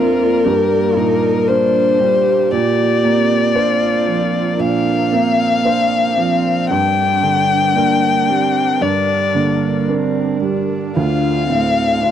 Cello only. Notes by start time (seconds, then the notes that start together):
Already playing: F4
0.44 G4
0.96 D#4
1.48 D4
1.99 G4
3.55 F4
4.60 D4
5.13 C4
5.65 A#3
6.18 C4
6.72 D4
7.76 A#3
8.29 C4
8.81 D4
9.35 A#3
9.89 C4
10.44 D4
10.97 F4
11.49 C4
12.01 D4